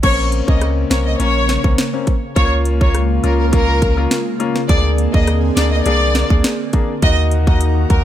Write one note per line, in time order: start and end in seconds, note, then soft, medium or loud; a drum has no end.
0.03 0.42 A#1 loud
0.03 4.65 C#3 medium
0.03 0.44 A#3 medium
0.03 6.98 A#3 medium
0.03 0.44 C4 medium
0.03 0.44 C#4 loud
0.03 0.15 C#5 loud
0.03 kick loud
0.03 closed hi-hat medium
0.03 crash loud
0.32 closed hi-hat medium
0.47 0.85 C#2 medium
0.47 0.87 A#3 medium
0.47 0.87 C4 medium
0.47 0.87 C#4 medium
0.47 0.59 D#5 medium
0.47 kick medium
0.61 cross-stick medium
0.61 closed hi-hat medium
0.90 1.16 C2 loud
0.90 1.17 A#3 medium
0.90 1.18 C4 medium
0.90 1.18 C#4 medium
0.90 1.02 C#5 medium
0.90 snare loud
0.90 closed hi-hat soft
1.06 1.17 D#5 medium
1.19 1.58 A#1 loud
1.19 1.61 A#3 medium
1.19 1.61 C#4 loud
1.19 1.62 C#5 loud
1.19 closed hi-hat medium
1.49 snare medium
1.49 closed hi-hat medium
1.64 1.76 C2 medium
1.64 1.81 A#3 medium
1.64 1.81 C4 medium
1.64 1.81 C#4 medium
1.64 kick medium
1.78 snare loud
1.78 closed hi-hat medium
1.93 2.10 A#3 medium
1.93 2.10 C4 medium
1.93 2.10 C#4 medium
2.07 kick medium
2.07 closed hi-hat soft
2.36 3.20 C#2 loud
2.36 4.67 G#3 medium
2.36 2.77 A#3 medium
2.36 2.77 C#4 medium
2.36 4.67 F4 medium
2.36 2.77 F4 loud
2.36 2.48 C#5 loud
2.36 kick loud
2.36 closed hi-hat medium
2.65 closed hi-hat soft
2.81 3.20 A#3 medium
2.81 3.20 C#4 medium
2.81 3.21 F4 medium
2.81 2.91 C#5 medium
2.81 kick loud
2.95 cross-stick medium
2.95 closed hi-hat medium
3.23 4.07 C#2 medium
3.23 3.51 A#3 medium
3.23 3.51 C#4 medium
3.23 3.51 F4 medium
3.23 3.36 A#4 medium
3.23 closed hi-hat soft
3.39 3.50 A#4 medium
3.52 3.94 A#3 loud
3.52 3.94 C#4 medium
3.52 3.94 F4 loud
3.52 3.95 A#4 loud
3.52 kick loud
3.52 closed hi-hat medium
3.82 kick medium
3.82 closed hi-hat medium
3.97 4.14 A#3 medium
3.97 4.14 C#4 medium
3.97 4.14 F4 medium
4.11 snare loud
4.11 closed hi-hat medium
4.40 4.58 A#3 medium
4.40 4.58 C#4 medium
4.40 4.58 F4 medium
4.40 closed hi-hat soft
4.56 snare medium
4.69 5.08 D2 loud
4.69 7.00 D3 medium
4.69 5.10 A#3 medium
4.69 7.00 C4 medium
4.69 5.10 D4 medium
4.69 7.00 G#4 medium
4.69 5.10 G#4 loud
4.69 4.81 D5 medium
4.69 kick loud
4.69 closed hi-hat medium
4.98 closed hi-hat medium
5.13 5.51 D#2 medium
5.13 5.53 A#3 medium
5.13 5.53 D4 medium
5.13 5.54 G#4 medium
5.13 5.24 D#5 medium
5.13 kick loud
5.27 cross-stick medium
5.27 closed hi-hat medium
5.56 5.82 D2 medium
5.56 5.84 A#3 medium
5.56 5.84 D4 medium
5.56 5.84 G#4 medium
5.56 5.68 D5 medium
5.56 snare loud
5.56 closed hi-hat soft
5.72 5.82 D#5 medium
5.86 6.24 C2 loud
5.86 6.27 A#3 medium
5.86 6.27 D4 medium
5.86 6.27 G#4 loud
5.86 6.28 D5 loud
5.86 closed hi-hat medium
6.15 snare medium
6.15 closed hi-hat medium
6.30 6.42 D2 medium
6.30 6.47 A#3 medium
6.30 6.47 D4 medium
6.30 6.47 G#4 medium
6.30 kick medium
6.44 snare loud
6.44 closed hi-hat medium
6.73 6.91 A#3 medium
6.73 6.92 D4 medium
6.73 6.92 G#4 medium
6.73 kick medium
6.73 closed hi-hat soft
7.02 7.86 D#2 loud
7.02 8.04 D#3 medium
7.02 7.43 A#3 medium
7.02 7.43 D#4 medium
7.02 8.04 D#4 medium
7.02 8.04 F#4 medium
7.02 7.44 F#4 loud
7.02 8.04 A#4 medium
7.02 7.14 D#5 loud
7.02 kick loud
7.02 closed hi-hat medium
7.31 closed hi-hat medium
7.47 7.87 A#3 medium
7.47 7.87 D#4 medium
7.47 7.87 F#4 medium
7.47 7.57 D#5 medium
7.47 kick medium
7.61 closed hi-hat medium
7.90 8.04 D#2 medium
7.90 8.04 A#3 medium
7.90 8.04 D#4 medium
7.90 8.04 F#4 medium
7.90 8.02 A#4 medium
7.90 kick medium
7.90 closed hi-hat soft